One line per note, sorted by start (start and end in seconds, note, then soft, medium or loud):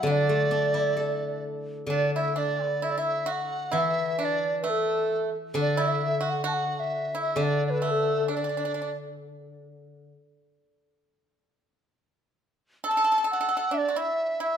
0.00 1.85 D3 medium
0.00 0.95 F#3 medium
0.00 0.13 F#5 medium
0.07 1.39 D4 medium
0.11 1.45 D5 medium
0.29 2.13 A3 soft
0.51 2.36 D4 soft
0.74 2.59 E4 soft
0.97 2.82 A4 soft
1.87 4.65 D3 soft
1.87 2.11 D4 medium
1.87 2.11 D5 medium
2.15 2.35 E4 medium
2.15 2.33 E5 medium
2.33 2.65 D4 medium
2.33 2.40 E5 medium
2.38 2.86 D5 medium
2.65 2.79 B3 medium
2.82 2.96 E4 medium
2.82 2.92 E5 medium
2.90 3.00 D5 medium
2.98 3.26 E4 medium
2.98 3.33 E5 medium
3.26 3.70 F#4 medium
3.32 3.80 F#5 medium
3.72 6.47 E3 soft
3.72 4.16 E4 medium
3.78 4.26 E5 medium
4.19 4.62 D4 medium
4.24 4.61 D5 medium
4.62 5.29 A3 medium
4.62 4.71 B4 soft
4.70 5.36 A4 medium
5.54 7.35 D3 medium
5.54 5.77 D4 medium
5.61 5.89 D5 medium
5.77 6.20 E4 medium
5.88 6.31 E5 medium
6.21 6.43 F#4 medium
6.30 6.45 F#5 medium
6.44 7.10 F#4 medium
6.44 6.55 A5 medium
6.54 6.75 F#5 medium
6.75 6.81 F#5 medium
6.80 7.19 E5 medium
7.15 7.36 E4 medium
7.21 7.45 E5 medium
7.36 10.12 D3 medium
7.36 7.80 D4 medium
7.43 7.64 D5 medium
7.67 7.92 B4 medium
7.67 7.71 D5 medium
7.82 8.26 A3 medium
7.91 8.33 A4 medium
8.28 8.36 D4 soft
8.33 8.43 D4 soft
8.33 8.97 D5 medium
8.44 8.48 D4 soft
8.49 8.56 D4 soft
8.57 8.64 D4 soft
8.65 8.73 D4 soft
8.74 8.81 D4 soft
8.82 8.89 D4 soft
12.84 12.90 A4 medium
12.84 13.27 A5 medium
12.91 12.96 A4 soft
12.97 13.03 A4 medium
13.04 13.11 A4 soft
13.12 13.17 A4 medium
13.18 13.23 A4 soft
13.24 13.32 A4 medium
13.31 13.39 A4 soft
13.31 13.75 F#5 medium
13.41 13.47 A4 medium
13.49 13.56 A4 medium
13.57 13.64 A4 medium
13.71 13.87 D4 medium
13.71 13.79 E5 medium
13.78 14.00 D5 medium
13.88 13.96 F#4 soft
13.96 14.38 E4 medium
13.96 14.42 E5 medium
14.40 14.57 E4 medium
14.40 14.57 E5 medium